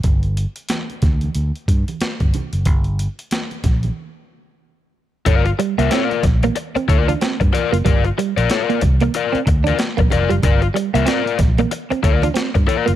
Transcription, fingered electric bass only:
X:1
M:4/4
L:1/16
Q:"Swing 16ths" 1/4=93
K:Gm
V:1 name="Fingered electric bass" clef=bass
G,,,3 z3 D,,2 D,, z G,, z2 G,,, z ^F,,, | G,,,3 z3 B,,,2 z8 | G,,,2 z C,, z2 B,,,2 z2 D,,2 z G,, z ^F,,, | G,,,2 z B,,, z2 C,,2 z2 D,,2 z B,,, F,,, ^F,,, |
G,,,2 z C,, z2 B,,,2 z2 D,,2 z G,, z ^F,,, |]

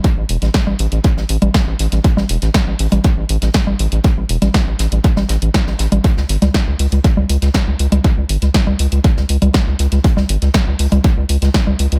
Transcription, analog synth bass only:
X:1
M:4/4
L:1/16
Q:1/4=120
K:C#m
V:1 name="Analog synth bass" clef=bass
z A,,, E,,, A,,, z A,,, A,,, A,,, z A,,, A,,, A,,, z A,,, A,,, A,,, | z A,,, E,,, A,,, z A,,, A,,, A,,, z A,,, A,,, A,,, z A,,, A,,, A,,, | z A,,, E,,, A,,, z A,,, A,,, A,,, z A,,, A,,, A,,, z A,,, A,,, A,,, | z C,, G,,, C,, z C,, C,, C,, z C,, C,, C,, z C,, C,, C,, |
z C,, G,,, C,, z C,, C,, C,, z C,, C,, C,, z C,, C,, C,, | z C,, G,,, C,, z C,, C,, C,, z C,, C,, C,, z C,, C,, C,, |]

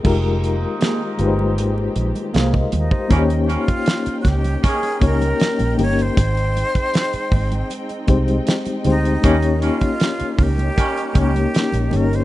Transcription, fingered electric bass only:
X:1
M:4/4
L:1/16
Q:1/4=78
K:Ebmix
V:1 name="Fingered electric bass" clef=bass
F,,,4 z2 G,,,2 A,,,2 B,,, z C,,2 E,, z | E,,3 z3 D,,2 z2 D,,2 z B,,, G,,,2 | A,,,3 z3 A,,,2 z2 C,,2 z2 =D,,2 | E,,3 z3 D,,2 z2 D,,2 z B,,, G,,,2 |]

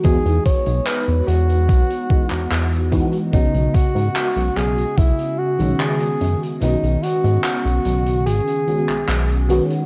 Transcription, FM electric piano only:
X:1
M:4/4
L:1/16
Q:1/4=73
K:B
V:1 name="FM electric piano"
[E,G,B,DF]8- [E,G,B,DF]2 [E,G,B,DF]4 [E,G,B,DF]2 | [C,G,B,CF]8- [C,G,B,CF]3 [D,G,B,CF]4- [D,G,B,CF] | [D,G,B,CF]8- [D,G,B,CF]2 [D,G,B,CF]4 [D,G,B,CF]2 |]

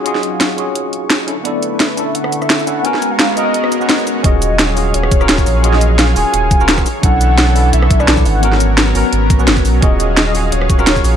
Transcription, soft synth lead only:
X:1
M:4/4
L:1/16
Q:"Swing 16ths" 1/4=172
K:Ebm
V:1 name="Soft synth lead"
e3 f3 d8 z2 | =d4 =e4 ^f3 e3 f2 | a3 f3 e8 z2 | e8 d8 |
e4 f2 a8 z2 | ^f8 =e3 =d3 f2- | ^f4 z12 | e8 d8 |]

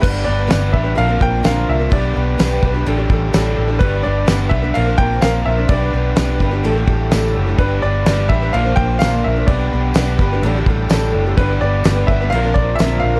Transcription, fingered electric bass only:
X:1
M:4/4
L:1/8
Q:1/4=127
K:G
V:1 name="Fingered electric bass" clef=bass
G,,, G,,, G,,, A,,, _B,,, B,,, B,,, C,, | B,,, B,,, B,,, B,,, A,,, A,,, A,,, A,,, | G,,, G,,, G,,, B,,, _B,,, B,,, B,,, B,,, | B,,, B,,, B,,, G,,, A,,, A,,, A,,, F,,, |
G,,, G,,, G,,, A,,, _B,,, B,,, B,,, B,,, | B,,, B,,, B,,, G,,, A,,, A,,, A,,, F,,, | G,,, G,,, G,,, G,,, _B,,, B,,, B,,, B,,, |]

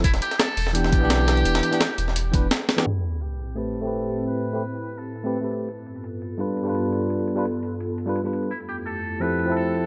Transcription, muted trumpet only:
X:1
M:4/4
L:1/8
Q:"Swing 16ths" 1/4=170
K:Am
V:1 name="Muted trumpet"
E G A2 G4- | G6 z2 | E2 G2 A4 | B4 A3 z |
z8 | z8 | E G A2 B2 A2 |]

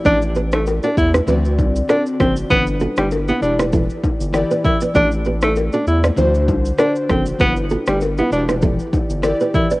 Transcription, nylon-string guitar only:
X:1
M:4/4
L:1/16
Q:"Swing 16ths" 1/4=98
K:G
V:1 name="Nylon-string guitar"
[Ad] z [GB] z2 [FA] z [GB] [FB]2 z2 [FA] z [DF] z | [GB] z [FA] z2 [EG] z [GB] [EA]2 z3 [GB] z [Bd] | [Ad] z [GB] z2 [FA] z [Bd] [Ac]2 z2 [FB] z [FA] z | [GB] z [FA] z2 [EG] z [GB] [EA]2 z3 [GB] z [Bd] |]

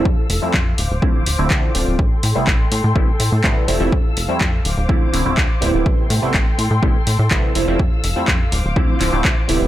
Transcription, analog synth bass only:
X:1
M:4/4
L:1/16
Q:1/4=124
K:Am
V:1 name="Analog synth bass" clef=bass
F,, z F,,, z F,,2 D,,, D,,, D,, D,,, D,,, D,,, D,,2 D,,, D,,, | A,,, z A,, A,,, A,,,2 A,, A,, A,,, z A,, A,, A,,, z F,,, F,,, | F,, z F,,, F,, F,,2 D,,, D,,, D,, D,,, D,,, D,,, D,, z D,,, D,,, | A,,, z A,, A,,, A,,,2 A,, A,, A,,, z A,, A,, A,,, z F,,, F,,, |
F,, z F,,, z F,,2 D,,, D,,, D,, z D,,, D,,, D,, z D,,, D,,, |]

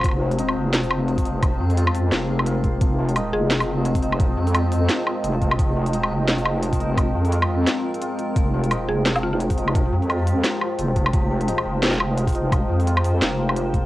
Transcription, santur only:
X:1
M:4/4
L:1/8
Q:"Swing 16ths" 1/4=173
K:Fm
V:1 name="Santur" clef=bass
F, F, E F, F, F, F, E | F, F, F F, B, B, B, C | F, F, E F, F, F, F, E | F, F, F F, B, F, C F, |
F, F, E F, F, F, F, E | F, F, F F, B, F F F, | F, F, E F, F, F, F, E | F, F, F F, B, F, C F, |
F, F, E F, F, F, F, E | F, F, F F, B, B, B, C |]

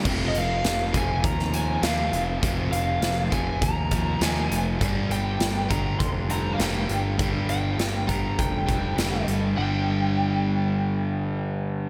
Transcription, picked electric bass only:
X:1
M:4/4
L:1/8
Q:1/4=101
K:Fdor
V:1 name="Picked electric bass" clef=bass
F,,, F,,, F,,, F,,, E,,2 E,, F,,, | F,,, F,,, F,,, F,,, E,,2 E,, F,,, | G,,, G,,, G,,, G,,, F,,,2 F,,, G,,, | G,,, G,,, G,,, G,,, F,,,2 F,,, G,,, |
G,,,8 |]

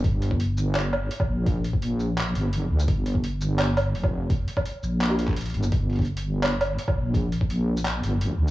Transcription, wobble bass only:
X:1
M:4/4
L:1/8
Q:1/4=169
K:Gm
V:1 name="Wobble bass" clef=bass
G,,,6 z B,,,- | B,,,4- B,,, G,,,2 D,, | G,,,6 F,,,2- | F,,, z2 B,,,4 G,,, |
G,,,6 z B,,,- | B,,,4- B,,, G,,,2 D,, |]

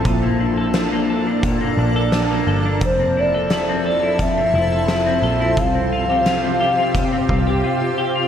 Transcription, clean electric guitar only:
X:1
M:4/4
L:1/16
Q:1/4=87
K:F
V:1 name="Clean electric guitar"
B,, B, D A D B, A D B,, B, D A D B, A D | F,, C E A E C A E F,, C E A E C A E | C, C F G F C G F C, C F G F C G F |]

